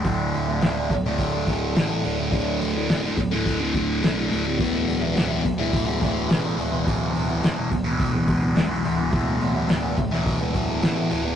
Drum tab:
HH |o-o-o-o-o-o-o-o-|o-o-o-o-o-o-o-o-|o-o-o-o-o-o-o-o-|o-o-o-o-o-o-o-o-|
SD |----o-----o-o---|----o--o----o---|----o-----o-o---|----o-------o---|
BD |o-----o-o-o-----|o-----o-o-o-----|o-----o-o-o-----|o-----o-o-o-----|

HH |o-o-o-o-o-o-o-o-|
SD |----o--o----o---|
BD |o-----o-o-o-----|